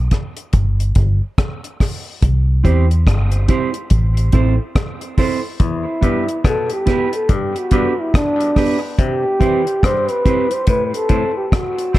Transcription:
0.11 kick medium
0.11 cross-stick medium
0.11 closed hi-hat medium
0.37 closed hi-hat medium
0.53 0.93 G1 medium
0.53 kick loud
0.53 closed hi-hat medium
0.80 closed hi-hat soft
0.95 1.19 G1 medium
0.95 kick medium
0.95 closed hi-hat medium
1.38 kick loud
1.38 cross-stick loud
1.38 closed hi-hat medium
1.64 closed hi-hat soft
1.80 kick medium
1.80 cross-stick medium
1.80 open hi-hat medium
2.22 2.62 C2 loud
2.22 kick loud
2.22 closed hi-hat loud
2.64 3.04 E2 medium
2.64 2.85 C4 medium
2.64 2.85 E4 medium
2.64 2.85 G4 medium
2.64 2.85 C5 medium
2.64 kick medium
2.64 closed hi-hat medium
2.91 closed hi-hat soft
3.07 3.46 G1 medium
3.07 kick loud
3.07 cross-stick loud
3.07 closed hi-hat medium
3.32 closed hi-hat soft
3.48 3.69 C4 medium
3.48 3.69 E4 medium
3.48 3.70 G4 medium
3.48 3.70 C5 medium
3.48 kick medium
3.48 closed hi-hat medium
3.73 muted clean electric guitar stroke soft
3.73 closed hi-hat soft
3.90 4.31 A1 medium
3.90 kick loud
3.90 closed hi-hat medium
4.17 closed hi-hat soft
4.32 4.57 A1 medium
4.32 4.54 C4 medium
4.32 4.54 E4 medium
4.32 4.54 A4 medium
4.32 4.55 C5 medium
4.32 kick medium
4.32 closed hi-hat medium
4.75 kick loud
4.75 cross-stick loud
4.75 closed hi-hat medium
5.01 closed hi-hat soft
5.18 5.38 C4 medium
5.18 5.39 E4 medium
5.18 5.39 A4 medium
5.18 5.39 C5 medium
5.18 kick medium
5.18 open hi-hat medium
5.60 5.85 E2 medium
5.60 6.43 E4 medium
5.60 kick loud
5.60 closed hi-hat loud
6.01 6.28 G2 medium
6.01 6.22 B3 medium
6.01 6.23 E4 medium
6.01 6.23 G4 medium
6.01 6.23 B4 medium
6.01 kick medium
6.01 closed hi-hat medium
6.29 closed hi-hat medium
6.44 6.70 B2 medium
6.44 6.70 A4 loud
6.44 kick loud
6.44 cross-stick loud
6.44 closed hi-hat medium
6.70 7.11 G4 medium
6.70 closed hi-hat soft
6.86 7.07 B3 medium
6.86 7.07 E4 medium
6.86 7.08 G4 medium
6.86 7.08 B4 loud
6.86 kick medium
6.86 cross-stick medium
6.86 closed hi-hat medium
7.13 7.34 A4 medium
7.13 closed hi-hat medium
7.29 7.55 G2 medium
7.29 7.60 G4 medium
7.29 kick loud
7.29 closed hi-hat medium
7.56 8.02 F#4 medium
7.56 closed hi-hat soft
7.71 7.87 G2 medium
7.71 7.92 B3 medium
7.71 7.92 D4 medium
7.71 7.93 G4 medium
7.71 7.93 B4 medium
7.71 kick medium
7.71 closed hi-hat medium
8.00 8.16 E4 medium
8.14 8.79 D4 loud
8.14 kick loud
8.14 cross-stick loud
8.14 closed hi-hat medium
8.40 closed hi-hat soft
8.56 8.76 B3 medium
8.56 8.77 D4 medium
8.56 8.77 G4 medium
8.56 8.77 B4 medium
8.56 kick medium
8.56 cross-stick medium
8.56 open hi-hat medium
8.99 9.24 C3 medium
8.99 9.87 G4 loud
8.99 kick loud
8.99 closed hi-hat loud
9.40 9.66 E3 medium
9.40 9.61 C4 medium
9.40 9.61 E4 medium
9.40 9.61 G4 medium
9.40 9.62 C5 medium
9.40 kick medium
9.40 closed hi-hat medium
9.67 closed hi-hat medium
9.83 10.08 G2 medium
9.83 10.12 C5 loud
9.83 kick loud
9.83 cross-stick loud
9.83 closed hi-hat loud
10.09 10.54 B4 loud
10.09 closed hi-hat soft
10.25 10.46 C4 medium
10.25 10.46 E4 medium
10.25 10.46 G4 medium
10.25 10.46 C5 medium
10.25 kick medium
10.25 closed hi-hat medium
10.50 10.69 C5 loud
10.50 muted clean electric guitar stroke soft
10.50 closed hi-hat soft
10.67 10.93 A2 medium
10.67 10.84 B4 loud
10.67 kick loud
10.67 closed hi-hat medium
10.86 10.97 B4 medium
10.94 11.36 A4 loud
10.94 closed hi-hat medium
11.09 11.24 A2 medium
11.09 11.30 C4 medium
11.09 11.30 E4 medium
11.09 11.30 A4 medium
11.09 11.30 C5 medium
11.09 kick medium
11.09 closed hi-hat medium
11.37 11.48 G4 medium
11.48 11.55 G4 medium
11.48 kick loud
11.53 11.99 F#4 loud
11.53 cross-stick loud
11.53 closed hi-hat medium
11.79 closed hi-hat soft
11.93 11.99 C4 medium
11.93 11.99 E4 medium
11.93 11.99 A4 medium
11.93 11.99 C5 medium
11.93 kick medium
11.93 cross-stick medium
11.93 open hi-hat medium

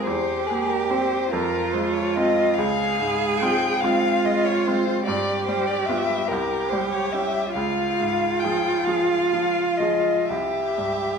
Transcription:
0.05 1.29 E2 medium
0.05 1.32 G4 medium
0.05 0.48 C5 medium
0.46 1.16 A#3 soft
0.46 0.71 G#4 medium
0.69 0.92 A#4 medium
0.90 1.28 C4 soft
0.90 1.29 G4 soft
0.90 1.33 C5 medium
1.31 2.55 F2 medium
1.31 2.60 F4 medium
1.31 1.74 A#4 medium
1.73 2.41 G#3 soft
1.73 1.95 C5 medium
1.93 2.17 C#5 medium
2.16 2.54 C4 soft
2.16 2.55 F4 soft
2.16 2.55 D#5 medium
2.54 3.38 F5 medium
2.58 5.03 C#2 medium
2.58 3.86 G#4 medium
2.99 3.66 G#2 soft
3.39 3.79 G#3 soft
3.39 3.79 C4 soft
3.39 3.79 F4 soft
3.39 3.82 G5 medium
3.81 4.22 G#3 soft
3.81 4.22 C4 soft
3.81 4.22 F4 soft
3.81 5.05 F4 medium
3.81 4.27 F5 medium
4.25 4.66 G#3 soft
4.25 4.47 D#5 medium
4.45 4.68 C#5 medium
4.66 5.03 G#3 soft
4.66 5.03 C4 soft
4.66 5.04 F4 soft
4.66 5.05 C5 medium
5.06 6.26 G2 medium
5.06 6.26 G4 medium
5.06 5.46 D5 medium
5.46 6.13 G3 soft
5.46 5.68 C5 medium
5.67 5.88 D5 medium
5.86 6.26 B3 soft
5.86 6.26 F4 soft
5.86 6.29 E5 medium
6.28 7.52 C2 medium
6.28 7.53 G4 medium
6.28 6.71 A#4 medium
6.69 7.39 G3 soft
6.69 6.90 C5 medium
6.91 7.14 C#5 medium
7.12 7.51 C#4 soft
7.12 7.52 E4 soft
7.12 7.53 E5 medium
7.54 10.24 C#2 soft
7.54 10.31 F4 medium
7.54 8.41 F5 medium
8.00 8.69 G#2 soft
8.39 8.86 G5 medium
8.44 8.84 F3 soft
8.44 8.84 F4 soft
8.44 8.84 G#4 soft
8.84 9.29 F3 soft
8.84 9.29 F4 soft
8.84 9.29 G#4 soft
8.84 9.79 F5 medium
9.33 9.78 F3 soft
9.77 10.24 F3 soft
9.77 10.25 F4 soft
9.77 10.27 D#5 medium
9.82 10.25 G#4 soft
10.26 11.19 G4 soft
10.26 11.19 E5 medium
10.30 11.19 C2 soft
10.78 11.19 G2 soft

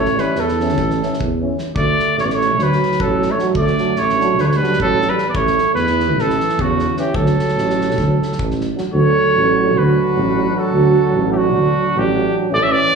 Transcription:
0.00 0.17 A1 medium
0.00 0.19 A3 medium
0.00 0.21 C#5 medium
0.05 snare soft
0.17 0.35 E3 medium
0.17 0.37 G3 medium
0.17 0.35 C#4 medium
0.17 0.42 B4 medium
0.17 snare soft
0.35 0.80 E2 medium
0.35 1.19 E3 medium
0.35 snare soft
0.40 1.21 A4 medium
0.48 snare soft
0.60 0.77 E3 soft
0.60 0.77 C#4 medium
0.60 snare soft
0.69 snare soft
0.77 1.02 A1 medium
0.77 kick medium
0.77 snare soft
0.90 snare soft
1.02 1.17 E3 soft
1.02 1.17 C#4 medium
1.02 snare soft
1.13 snare soft
1.20 1.50 E2 medium
1.20 kick medium
1.41 1.54 E3 soft
1.41 1.55 C#4 medium
1.58 snare soft
1.74 1.98 D2 medium
1.74 2.13 A3 medium
1.74 2.14 D5 loud
1.74 kick medium
1.99 snare soft
2.17 2.60 A1 medium
2.17 2.26 A3 medium
2.17 2.26 C#5 medium
2.17 snare soft
2.24 2.34 B3 medium
2.24 2.36 D5 medium
2.30 2.61 A3 medium
2.30 snare soft
2.35 2.64 C#5 medium
2.41 snare soft
2.59 2.81 D2 medium
2.59 3.00 F#3 medium
2.59 3.02 B4 medium
2.59 snare soft
2.72 snare soft
2.83 snare soft
2.92 snare soft
3.00 3.30 A1 medium
3.00 3.33 F#3 medium
3.00 3.32 A4 medium
3.00 kick medium
3.22 snare soft
3.31 3.47 A3 medium
3.31 3.47 C#5 medium
3.37 3.54 F#3 medium
3.37 3.53 D4 medium
3.37 snare soft
3.54 3.77 D2 medium
3.54 3.96 A3 medium
3.54 4.00 D5 medium
3.54 kick medium
3.67 snare soft
3.77 3.95 F#3 medium
3.77 3.94 D4 medium
3.77 snare soft
3.96 4.39 A1 medium
3.96 4.40 A3 medium
3.96 4.42 C#5 medium
3.96 snare soft
4.09 snare soft
4.19 4.37 F#3 medium
4.19 4.36 D4 medium
4.19 snare soft
4.37 4.60 D2 medium
4.37 4.47 F#3 medium
4.37 4.47 B4 medium
4.37 snare soft
4.45 4.57 A3 medium
4.45 4.58 C#5 medium
4.51 4.80 G3 medium
4.51 snare soft
4.56 4.80 B4 loud
4.60 4.76 F#3 medium
4.60 4.76 D4 medium
4.60 snare soft
4.73 snare soft
4.78 5.09 A1 medium
4.78 5.11 F#3 medium
4.78 5.11 A4 loud
4.78 kick medium
4.99 5.13 F#3 medium
4.99 5.14 D4 medium
4.99 snare soft
5.09 5.26 G3 medium
5.09 5.26 B4 medium
5.18 snare soft
5.28 5.34 B3 medium
5.28 5.37 D5 medium
5.33 5.57 A1 medium
5.33 5.75 A3 medium
5.33 5.74 C#5 medium
5.33 kick medium
5.47 snare soft
5.58 snare soft
5.75 6.19 E2 medium
5.75 6.17 E3 medium
5.75 6.22 B4 loud
5.75 snare soft
5.87 snare soft
6.00 snare soft
6.17 6.40 A1 medium
6.17 6.62 E3 medium
6.17 6.62 A4 medium
6.17 snare soft
6.30 snare soft
6.40 snare soft
6.49 snare soft
6.58 6.88 E2 medium
6.58 6.97 C#3 medium
6.58 6.98 F#4 medium
6.58 kick medium
6.79 snare soft
6.97 7.14 E3 medium
6.97 7.16 E3 medium
6.97 7.14 C#4 medium
6.97 7.16 G4 medium
6.97 snare soft
7.14 7.37 D2 medium
7.14 8.60 F#3 medium
7.14 8.60 A4 medium
7.14 kick medium
7.26 snare soft
7.39 snare soft
7.48 snare soft
7.56 7.99 A1 medium
7.56 snare soft
7.70 snare soft
7.81 snare soft
7.91 snare soft
7.97 8.20 D2 medium
7.97 kick medium
7.97 snare soft
8.23 snare soft
8.32 snare soft
8.39 8.70 A1 medium
8.39 kick medium
8.51 snare soft
8.61 snare soft
8.76 8.83 F#3 soft
8.76 8.83 D4 soft
8.76 snare soft
8.92 9.17 D2 loud
8.92 12.49 F#3 medium
8.92 12.52 D4 medium
8.92 9.77 A4 medium
8.92 9.79 C#5 loud
9.36 9.78 A1 medium
9.76 10.00 D2 medium
9.76 10.56 F#4 medium
9.76 10.59 B4 medium
10.18 10.48 A1 medium
10.56 11.27 F#4 medium
10.56 11.31 A4 medium
10.72 10.96 D2 medium
11.14 11.57 A1 loud
11.28 11.40 E4 medium
11.32 11.39 G4 medium
11.37 11.98 D4 medium
11.37 12.00 F#4 medium
11.55 11.79 D2 medium
11.96 12.27 A1 loud
11.96 12.36 D4 medium
11.96 12.36 G4 medium
12.50 12.75 A1 loud
12.50 12.95 E3 medium
12.50 12.95 C#4 medium
12.50 12.63 A4 medium
12.50 12.64 D5 loud
12.61 12.73 C#5 medium
12.61 12.73 E5 medium
12.71 12.95 B4 medium
12.71 12.95 D5 loud

